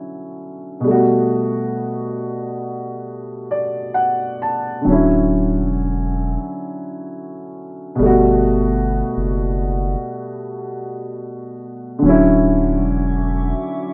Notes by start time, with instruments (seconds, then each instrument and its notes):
Already playing: upright piano D3 F#3 C#4 E4
0.80 upright piano B2 G3
0.87 upright piano A3 F#4
3.51 upright piano D5
3.94 upright piano F#5
4.42 upright piano A5
4.81 upright piano D3 F#3
4.86 sub bass D1, upright piano C#4
4.92 upright piano E4
5.59 sub bass E1
7.95 upright piano B2 G3
7.99 sub bass G1, upright piano A3
8.06 upright piano F#4
9.17 sub bass F#1
11.99 upright piano D3 F#3, ambient pad F#4 E5 C#6 D6
12.03 sub bass D1, upright piano C#4
12.09 upright piano E4
12.76 sub bass E1